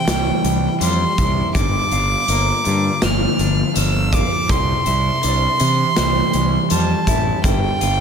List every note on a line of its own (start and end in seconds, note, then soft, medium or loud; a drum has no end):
0.00 0.44 C3 medium
0.00 0.43 E3 medium
0.00 1.22 D4 medium
0.00 0.81 E4 medium
0.00 0.77 G5 medium
0.07 0.30 C2 medium
0.07 0.81 G3 medium
0.07 snare loud
0.07 closed hi-hat medium
0.44 0.67 C2 medium
0.44 1.55 E3 medium
0.44 closed hi-hat medium
0.81 1.03 F2 medium
0.81 1.95 G3 medium
0.81 1.52 C6 loud
0.81 closed hi-hat medium
1.18 1.41 C2 medium
1.18 1.55 E4 medium
1.18 kick medium
1.18 closed hi-hat medium
1.55 1.78 G1 medium
1.55 3.39 G2 medium
1.55 3.05 D6 loud
1.55 kick medium
1.55 closed hi-hat medium
1.92 2.14 G1 medium
1.92 3.76 F4 medium
1.92 closed hi-hat medium
2.28 2.51 G1 medium
2.28 4.13 A#3 medium
2.28 closed hi-hat medium
2.65 2.88 G2 medium
2.65 3.38 D3 medium
2.65 closed hi-hat medium
3.02 3.25 G1 medium
3.02 3.75 F3 medium
3.02 3.77 F6 medium
3.02 snare loud
3.02 closed hi-hat medium
3.39 3.61 G1 medium
3.39 4.50 D3 medium
3.39 closed hi-hat medium
3.76 4.21 G1 medium
3.76 4.50 F3 medium
3.76 4.15 E6 medium
3.76 closed hi-hat medium
4.13 4.50 F4 medium
4.13 4.52 D6 medium
4.13 kick medium
4.13 closed hi-hat medium
4.49 4.72 C2 medium
4.49 6.34 C3 medium
4.49 6.72 C6 loud
4.49 kick loud
4.49 closed hi-hat medium
4.86 5.09 C2 medium
4.86 6.70 E4 medium
4.86 closed hi-hat medium
5.23 5.46 C2 medium
5.23 7.11 D4 medium
5.23 closed hi-hat medium
5.60 5.83 C3 medium
5.60 6.33 E3 medium
5.60 closed hi-hat medium
5.96 6.20 C2 medium
5.96 6.70 G3 medium
5.96 snare medium
5.96 closed hi-hat medium
6.33 6.56 C2 medium
6.33 7.44 E3 medium
6.33 closed hi-hat medium
6.70 6.93 F2 medium
6.70 7.84 G3 medium
6.70 7.44 A5 medium
6.70 closed hi-hat medium
7.07 7.30 A1 medium
7.07 7.44 E4 medium
7.07 kick medium
7.07 closed hi-hat medium
7.44 7.67 G1 medium
7.44 8.00 G2 medium
7.44 8.00 G5 loud
7.44 kick medium
7.44 closed hi-hat medium
7.81 8.00 G1 medium
7.81 8.00 F4 medium
7.81 closed hi-hat medium